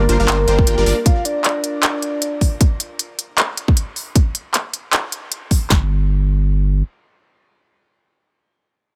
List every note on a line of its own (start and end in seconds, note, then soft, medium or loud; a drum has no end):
0.00 0.77 A#4 medium
0.00 0.99 A#4 loud
0.00 1.21 C5 medium
0.00 0.86 D5 medium
0.09 0.18 G1 medium
0.09 0.17 G3 loud
0.09 0.17 D4 medium
0.09 0.19 F4 medium
0.09 0.17 F4 medium
0.09 0.17 A#4 medium
0.09 0.17 C5 loud
0.09 closed hi-hat medium
0.20 0.27 G1 loud
0.20 0.26 G3 medium
0.20 0.26 D4 medium
0.20 0.39 F4 medium
0.20 0.26 F4 medium
0.20 0.26 A#4 medium
0.20 0.26 F5 loud
0.28 0.46 G1 loud
0.28 0.37 G3 medium
0.28 0.37 D4 medium
0.28 0.37 F4 medium
0.28 0.37 A#4 medium
0.28 0.37 C5 loud
0.28 clap loud
0.28 closed hi-hat medium
0.39 0.58 F4 medium
0.48 0.65 G1 loud
0.48 0.65 G3 medium
0.48 0.65 D4 medium
0.48 0.65 F4 medium
0.48 0.65 A#4 medium
0.48 0.65 C5 medium
0.48 2.03 G5 medium
0.48 closed hi-hat medium
0.58 3.11 F4 loud
0.58 kick loud
0.67 0.76 G1 loud
0.67 0.75 G3 medium
0.67 0.75 D4 medium
0.67 0.75 F4 medium
0.67 0.75 A#4 medium
0.67 0.75 G5 medium
0.67 closed hi-hat medium
0.78 0.85 G1 loud
0.78 0.84 G3 loud
0.78 0.84 D4 medium
0.78 0.84 F4 medium
0.78 0.84 A#4 medium
0.78 2.90 A#4 medium
0.78 0.84 D5 loud
0.86 0.93 G1 loud
0.86 0.95 G3 medium
0.86 0.95 D4 medium
0.86 0.95 F4 medium
0.86 0.95 A#4 medium
0.86 0.95 D5 loud
0.86 2.71 D5 loud
0.86 open hi-hat medium
1.06 1.22 F5 loud
1.06 kick loud
1.06 closed hi-hat medium
1.25 1.42 D5 medium
1.25 closed hi-hat medium
1.44 2.54 D5 loud
1.44 clap medium
1.44 closed hi-hat medium
1.64 closed hi-hat medium
1.83 clap loud
1.83 closed hi-hat medium
2.02 closed hi-hat medium
2.22 closed hi-hat medium
2.41 kick medium
2.41 open hi-hat medium
2.61 kick loud
2.61 closed hi-hat medium
2.80 closed hi-hat medium
2.99 closed hi-hat medium
3.19 closed hi-hat medium
3.38 clap loud
3.38 closed hi-hat medium
3.57 closed hi-hat medium
3.68 kick loud
3.77 closed hi-hat medium
3.96 open hi-hat medium
4.16 kick loud
4.16 closed hi-hat medium
4.35 closed hi-hat medium
4.54 clap medium
4.54 closed hi-hat medium
4.74 closed hi-hat medium
4.93 clap loud
4.93 closed hi-hat medium
5.12 closed hi-hat medium
5.32 closed hi-hat medium
5.51 kick medium
5.51 open hi-hat medium
5.70 6.82 G1 loud
5.70 kick loud
5.70 snare loud
5.70 clap medium